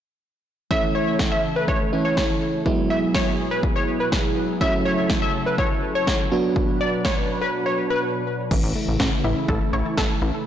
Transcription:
0.71 analog synth pad C#3 A3 E4 A4, fm electric piano E3 A3 C#4 E4, analog polysynth E5, kick
0.95 analog polysynth C#5
1.19 kick, snare
1.32 analog polysynth E5
1.56 analog polysynth B4
1.68 analog polysynth C#5, kick
1.93 fm electric piano E3 A3 C#4 E4
2.05 analog polysynth C#5
2.17 kick, snare
2.66 analog synth pad B2 F#3 G#4, fm electric piano F#3 G#3 B3 E4, kick
2.90 analog polysynth E5
3.14 analog polysynth C#5, kick, snare
3.51 analog polysynth B4
3.63 kick
3.76 analog polysynth C#5
4.00 analog polysynth B4
4.12 kick, snare
4.61 analog synth pad C#3 A4, fm electric piano F#3 A3 C#4 E4, analog polysynth E5, kick
4.85 analog polysynth C#5
5.10 kick, snare
5.22 analog polysynth E5
5.46 analog polysynth B4
5.58 analog polysynth C#5, kick
5.95 analog polysynth C#5
6.07 kick, snare
6.32 analog synth pad B2 F#3 D4 B4, fm electric piano F#3 B3 D4 F#4
6.56 kick
6.81 analog polysynth D5
7.05 analog polysynth C#5, kick, snare
7.41 analog polysynth B4
7.66 analog polysynth C#5
7.90 analog polysynth B4
8.51 analog synth bass A1, analog synth pad C#3 E3 A3 E4, synth arpeggio sound E3, kick, crash
8.63 analog synth bass A1
8.76 synth arpeggio sound A3
8.88 analog synth bass A1
9.00 analog synth bass A1, synth arpeggio sound C#4, kick, snare
9.24 analog synth bass A1, synth arpeggio sound E4
9.49 analog synth bass A1, synth arpeggio sound A4, kick
9.73 analog synth bass A1, synth arpeggio sound C#5
9.97 analog synth bass A1, synth arpeggio sound A4, kick, snare
10.22 analog synth bass A1, synth arpeggio sound E4

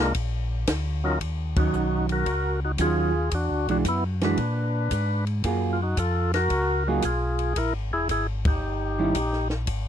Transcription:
Already playing: tonewheel organ C2 G#3
0.00 tonewheel organ A#3 D4 F4 A#4
0.14 tonewheel organ A#1, kick, ride
0.67 tonewheel organ D2, kick, snare, hi-hat pedal, ride
1.04 tonewheel organ F#3 C#4 D#4 F4 A#4
1.20 tonewheel organ D#2, kick, ride
1.56 hollow-body jazz guitar D#3 F#3 C#4, tonewheel organ D#4 F#4, kick, ride
1.73 tonewheel organ B1, hi-hat pedal
2.09 tonewheel organ F#4 A#4, ride
2.26 tonewheel organ C#2, kick, ride
2.65 tonewheel organ D#4 F#4
2.78 tonewheel organ D#2 F4 G#4, hollow-body jazz guitar D#3 F#3 C#4 F4, kick, hi-hat pedal, ride
3.31 tonewheel organ E2 D4 F#4, kick, ride
3.50 tonewheel organ D2
3.67 tonewheel organ B1 D4 F#4, hollow-body jazz guitar E3 G#3 D4 F#4, ride
3.85 tonewheel organ F#2 B3, kick, hi-hat pedal, ride
3.89 tonewheel organ E4
4.21 hollow-body jazz guitar E3 G#3 D4 F#4, tonewheel organ D4 B4, snare, ride
4.37 tonewheel organ A#2, kick, ride
4.91 tonewheel organ G#2, kick, hi-hat pedal, ride
5.27 ride
5.44 tonewheel organ F#2, hollow-body jazz guitar F#3 A#3 F4 G#4, kick, ride
5.73 tonewheel organ F4
5.82 tonewheel organ D#4 F#4
5.97 tonewheel organ F2 F4 A4, kick, hi-hat pedal, ride
6.34 tonewheel organ F#4 A#4, snare, ride
6.50 tonewheel organ C#2, kick, ride
6.87 hollow-body jazz guitar F#3 A#3 F4 G#4, tonewheel organ D#4 F#4
7.02 tonewheel organ B1 F4 G#4, kick, hi-hat pedal, ride
7.39 ride
7.56 tonewheel organ A#1 E4 A#4, kick, ride
7.74 tonewheel organ G#1
7.92 tonewheel organ E1 E4 G#4
8.09 tonewheel organ G#1 E4 G#4, kick, hi-hat pedal, ride
8.45 tonewheel organ D#4 G4, kick, ride
8.62 tonewheel organ G1
8.99 hollow-body jazz guitar D#3 G3 C#4 E4
9.15 tonewheel organ A#1, kick, hi-hat pedal, ride
9.33 snare
9.50 snare
9.67 tonewheel organ G#1, kick, ride

